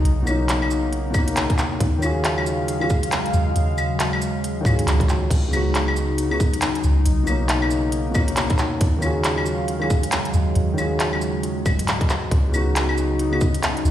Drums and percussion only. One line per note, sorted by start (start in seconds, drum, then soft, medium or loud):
0.05 closed hi-hat medium
0.27 cabasa medium
0.27 claves medium
0.49 clap loud
0.49 closed hi-hat medium
0.62 claves medium
0.71 cabasa medium
0.93 closed hi-hat medium
1.14 kick loud
1.14 cabasa medium
1.14 claves medium
1.28 closed hi-hat medium
1.37 clap loud
1.37 closed hi-hat medium
1.50 kick loud
1.50 closed hi-hat soft
1.58 clap medium
1.58 cabasa medium
1.80 kick loud
1.80 closed hi-hat medium
2.02 cabasa medium
2.02 claves medium
2.24 clap loud
2.24 closed hi-hat medium
2.38 claves medium
2.46 cabasa medium
2.68 closed hi-hat medium
2.81 claves medium
2.90 kick loud
2.90 cabasa medium
3.03 closed hi-hat medium
3.12 clap loud
3.12 closed hi-hat medium
3.26 closed hi-hat soft
3.34 cabasa medium
3.56 closed hi-hat medium
3.78 cabasa medium
3.78 claves medium
4.00 clap loud
4.00 closed hi-hat medium
4.13 claves medium
4.22 closed hi-hat soft
4.22 cabasa medium
4.44 closed hi-hat medium
4.65 kick loud
4.65 cabasa medium
4.65 claves medium
4.79 closed hi-hat medium
4.88 clap loud
4.88 closed hi-hat medium
5.00 kick loud
5.00 closed hi-hat soft
5.09 clap medium
5.09 cabasa medium
5.31 kick loud
5.31 closed hi-hat medium
5.31 crash medium
5.53 cabasa medium
5.53 claves medium
5.75 clap loud
5.75 closed hi-hat medium
5.88 claves medium
5.96 cabasa medium
6.18 closed hi-hat medium
6.31 claves medium
6.40 kick loud
6.40 cabasa medium
6.54 closed hi-hat medium
6.62 clap loud
6.62 closed hi-hat medium
6.75 closed hi-hat soft
6.84 cabasa medium
7.06 closed hi-hat medium
7.27 cabasa medium
7.27 claves medium
7.49 clap loud
7.49 closed hi-hat medium
7.62 claves medium
7.71 cabasa medium
7.92 closed hi-hat medium
8.15 kick loud
8.15 cabasa medium
8.15 claves medium
8.28 closed hi-hat medium
8.37 clap loud
8.37 closed hi-hat medium
8.50 kick loud
8.50 closed hi-hat soft
8.58 clap medium
8.58 cabasa medium
8.81 kick loud
8.81 closed hi-hat medium
9.02 cabasa medium
9.02 claves medium
9.24 clap loud
9.24 closed hi-hat medium
9.38 claves medium
9.46 cabasa medium
9.68 closed hi-hat medium
9.82 claves medium
9.90 kick loud
9.90 cabasa medium
10.03 closed hi-hat medium
10.12 clap loud
10.12 closed hi-hat medium
10.25 closed hi-hat soft
10.34 cabasa medium
10.55 closed hi-hat medium
10.78 cabasa medium
10.78 claves medium
11.00 clap loud
11.00 closed hi-hat medium
11.13 claves medium
11.21 cabasa medium
11.43 closed hi-hat medium
11.66 kick loud
11.66 cabasa medium
11.66 claves medium
11.79 closed hi-hat medium
11.88 clap loud
11.88 closed hi-hat medium
12.01 kick loud
12.01 closed hi-hat soft
12.10 clap medium
12.10 cabasa medium
12.31 kick loud
12.31 closed hi-hat medium
12.54 cabasa medium
12.54 claves medium
12.76 clap loud
12.76 closed hi-hat medium
12.89 claves medium
12.98 cabasa medium
13.19 closed hi-hat medium
13.33 claves medium
13.41 kick loud
13.41 cabasa medium
13.54 closed hi-hat medium
13.63 clap loud
13.63 closed hi-hat medium
13.77 closed hi-hat soft
13.85 cabasa medium